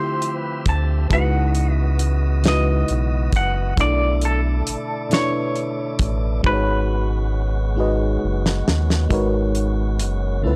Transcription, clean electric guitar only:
0.00 0.37 C5 medium
0.37 0.63 B4 medium
0.69 1.13 A5 loud
1.13 1.73 F#5 medium
1.73 1.97 E5 medium
2.48 3.36 D#5 loud
3.36 3.76 F#5 loud
3.81 4.25 D5 loud
4.25 5.15 A4 medium
5.14 6.41 C#5 medium
6.46 8.19 B4 medium

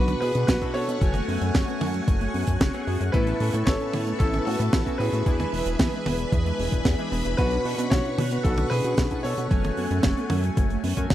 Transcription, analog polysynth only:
0.00 0.59 B2 medium
0.00 0.59 B3 medium
0.00 0.59 D4 medium
0.00 0.59 F#4 medium
0.00 0.59 B4 loud
0.62 0.98 B2 medium
0.62 0.98 C#4 medium
0.62 0.98 D4 medium
0.62 0.98 F#4 medium
0.62 0.98 A4 medium
1.01 2.71 A3 loud
1.01 2.71 C#4 medium
1.01 2.71 F#4 medium
1.01 2.71 G#5 loud
2.74 3.11 A3 medium
2.74 3.11 C#4 medium
2.74 3.11 F#4 medium
2.74 3.11 G#4 loud
3.14 4.84 A2 loud
3.14 4.84 B3 medium
3.14 4.84 C#4 medium
3.14 4.84 E4 medium
3.14 4.84 A4 loud
4.86 5.23 A2 medium
4.86 5.23 B3 medium
4.86 5.23 C#4 medium
4.86 5.23 E4 medium
4.86 5.23 F#4 loud
5.26 6.96 E3 loud
5.26 6.96 D4 medium
5.26 6.96 E4 medium
5.26 6.96 G#4 medium
5.26 6.96 B4 loud
6.99 7.35 E3 medium
6.99 7.35 D4 medium
6.99 7.35 E4 medium
6.99 7.35 G#4 medium
6.99 7.35 B4 medium
7.38 9.08 B2 loud
7.38 9.08 C#4 medium
7.38 9.08 D4 medium
7.38 9.08 F#4 medium
7.38 9.08 B4 loud
9.11 9.48 B2 medium
9.11 9.48 C#4 medium
9.11 9.48 D4 medium
9.11 9.48 F#4 medium
9.11 9.48 A4 loud
9.51 10.94 A3 loud
9.51 10.94 C#4 medium
9.51 10.94 F#4 medium
9.51 10.94 G#5 loud
10.97 11.15 A3 loud
10.97 11.15 C#4 medium
10.97 11.15 F#4 medium
10.97 11.15 G#5 loud

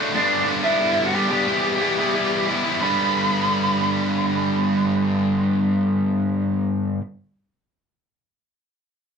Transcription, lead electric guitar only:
0.16 0.46 D4 medium
0.16 0.46 D5 medium
0.64 1.03 E4 medium
0.64 1.06 E5 medium
1.06 1.14 F#4 medium
1.06 1.14 F#5 medium
1.15 1.29 G4 medium
1.15 1.29 G5 medium
1.30 2.43 G4 medium
1.30 2.44 G5 medium
2.81 6.25 B5 medium

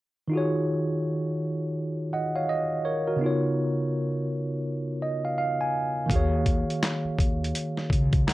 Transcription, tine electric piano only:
0.28 3.15 D#3 medium
0.28 3.16 D#4 medium
0.32 2.09 F4 medium
0.32 2.10 F#4 medium
0.32 2.11 G#4 medium
0.38 2.12 C#5 medium
2.13 2.34 D#5 soft
2.13 2.34 F#5 medium
2.36 2.48 C#5 soft
2.36 2.48 F5 medium
2.49 2.83 D#5 medium
2.85 3.06 A#4 soft
2.85 3.06 C#5 medium
3.07 3.41 F#4 soft
3.07 3.41 A#4 medium
3.16 6.03 C#3 medium
3.16 6.05 B3 medium
3.21 6.06 D#4 medium
3.21 6.07 F4 medium
3.26 6.08 C#5 medium
5.02 5.22 D#5 medium
5.25 5.37 F5 medium
5.38 5.58 F5 medium
5.61 6.07 G#5 medium
6.06 8.33 D#3 medium
6.06 8.33 A#3 medium
6.06 8.33 F5 medium
6.12 8.33 F#4 medium
6.12 8.33 G#4 medium
6.12 8.33 C#5 medium
8.27 8.33 F#5 medium
8.27 8.33 A#5 medium

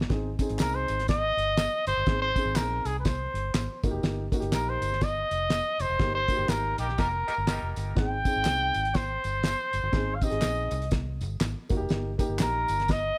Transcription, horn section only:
6.79 6.87 G3 medium
6.79 6.87 A#3 medium
6.79 6.87 D#4 medium
6.79 6.87 A#4 medium
6.99 7.08 G3 medium
6.99 7.08 A#3 loud
6.99 7.08 D#4 medium
6.99 7.08 A#4 loud
7.28 7.34 G3 loud
7.28 7.34 A#3 medium
7.28 7.34 D#4 loud
7.28 7.34 A#4 loud
7.48 7.95 G3 medium
7.48 7.95 A#3 loud
7.48 7.95 D#4 medium
7.48 7.95 A#4 loud

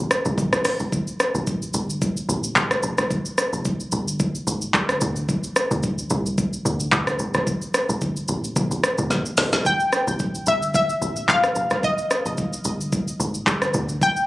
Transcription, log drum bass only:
0.25 0.36 C2 medium
0.38 0.51 A#1 medium
0.53 0.63 A1 medium
0.80 0.91 G1 medium
1.35 1.69 A1 loud
1.74 2.22 G1 medium
2.29 2.53 A1 loud
2.56 2.80 A1 medium
2.83 2.96 F1 loud
2.98 3.09 G1 medium
3.53 3.87 F1 loud
3.92 4.40 G1 loud
4.47 4.71 G#1 medium
4.74 4.98 G1 medium
5.02 5.25 D2 loud
5.71 6.05 D2 medium
6.11 6.58 C2 loud
6.65 6.89 D2 medium
6.92 7.16 D2 loud
7.20 7.33 G1 medium
7.35 7.45 A1 loud
7.89 8.24 G1 loud
8.29 8.52 A1 medium
8.56 8.69 A#1 loud
8.71 8.82 A1 medium
8.98 9.09 D2 medium
9.10 9.24 A#1 medium
9.38 9.51 A1 loud
9.53 9.63 G1 loud
10.07 10.42 A1 loud
10.47 10.95 G1 medium
11.02 11.25 A1 medium
11.29 11.52 A1 medium
11.56 11.69 F1 loud
11.71 11.82 G1 medium
12.26 12.60 F1 loud
12.65 13.13 G1 medium
13.20 13.43 G#1 medium
13.47 13.71 G1 medium
13.74 13.98 D2 loud

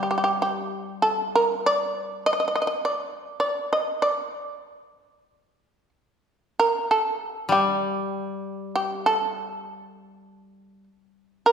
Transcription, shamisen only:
0.03 0.09 G4 soft
0.11 0.17 G4 medium
0.18 0.23 G4 soft
0.24 0.31 G4 medium
0.42 1.00 G4 medium
1.02 1.32 A4 medium
1.35 1.64 A#4 medium
1.66 2.04 D5 medium
2.04 2.22 A#4 medium
2.26 2.32 D#5 medium
2.33 2.39 D#5 medium
2.40 2.47 D#5 medium
2.48 2.54 D#5 medium
2.56 2.61 D#5 medium
2.62 2.66 D#5 medium
2.67 2.74 D#5 medium
2.85 3.39 D5 medium
3.40 3.69 D5 medium
3.73 4.01 D#5 medium
4.02 4.70 D5 medium
4.70 4.84 D#5 medium
4.84 5.08 D5 medium
5.08 5.22 D#5 medium
5.22 5.89 D5 medium
6.59 6.88 A#4 medium
6.91 7.28 A4 medium
7.28 7.48 G4 medium
7.52 8.70 G4 medium
8.76 9.04 G4 medium
9.06 10.84 A4 medium
11.46 11.52 A#4 medium

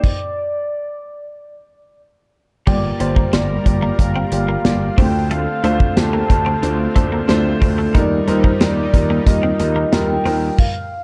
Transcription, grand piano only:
2.66 2.91 A#3 medium
2.66 2.91 F4 medium
2.66 2.92 G4 medium
2.66 2.92 D5 loud
2.99 3.24 A#3 medium
2.99 3.24 F4 medium
2.99 3.25 G4 medium
2.99 3.25 D5 loud
3.32 3.57 A#3 medium
3.32 3.57 F4 medium
3.32 3.57 G4 medium
3.32 3.58 D5 medium
3.65 3.90 A#3 medium
3.65 3.90 F4 medium
3.65 3.90 G4 medium
3.65 3.91 D5 medium
3.98 4.23 A#3 medium
3.98 4.23 F4 medium
3.98 4.23 G4 medium
3.98 4.24 D5 medium
4.32 4.56 A#3 medium
4.32 4.56 F4 medium
4.32 4.57 G4 medium
4.32 4.57 D5 medium
4.64 4.89 A#3 medium
4.64 4.89 F4 medium
4.64 4.89 G4 medium
4.64 4.90 D5 loud
4.97 5.50 A3 medium
4.97 5.50 D4 medium
4.97 5.51 F4 medium
4.97 5.51 C5 medium
5.63 5.88 A3 medium
5.63 5.88 D4 medium
5.63 5.88 F4 medium
5.63 5.89 C5 loud
5.96 6.21 A3 medium
5.96 6.21 D4 medium
5.96 6.21 F4 medium
5.96 6.21 G4 medium
6.29 6.54 A3 medium
6.29 6.54 D4 medium
6.29 6.54 F4 medium
6.29 6.54 C5 medium
6.62 6.87 A3 medium
6.62 6.87 D4 medium
6.62 6.87 F4 medium
6.62 6.87 C5 medium
6.95 7.20 A3 medium
6.95 7.20 D4 medium
6.95 7.20 F4 medium
6.95 7.20 C5 medium
7.28 7.53 A3 loud
7.28 7.53 D4 loud
7.28 7.53 F4 loud
7.28 7.53 C5 loud
7.61 7.86 A3 medium
7.61 7.86 D4 medium
7.61 7.86 F4 medium
7.61 7.86 C5 loud
7.94 8.19 G3 loud
7.94 8.19 D#4 medium
7.94 8.19 F4 medium
7.94 8.19 A#4 loud
8.27 8.52 G3 loud
8.27 8.52 D#4 medium
8.27 8.52 F4 medium
8.27 8.52 A#4 loud
8.60 8.85 G3 medium
8.60 8.85 D#4 medium
8.60 8.85 F4 medium
8.60 8.85 A#4 medium
8.93 9.18 G3 medium
8.93 9.18 D#4 medium
8.93 9.18 F4 medium
8.93 9.18 A#4 medium
9.26 9.51 G3 medium
9.26 9.51 D#4 medium
9.26 9.51 F4 medium
9.26 9.51 A#4 medium
9.59 9.84 G3 medium
9.59 9.84 D#4 medium
9.59 9.84 F4 medium
9.59 9.84 A#4 medium
9.92 10.17 G3 medium
9.92 10.17 D#4 medium
9.92 10.17 F4 medium
9.92 10.17 A#4 loud
10.25 10.49 G3 medium
10.25 10.50 D#4 medium
10.25 10.50 F4 medium
10.25 10.50 A#4 medium

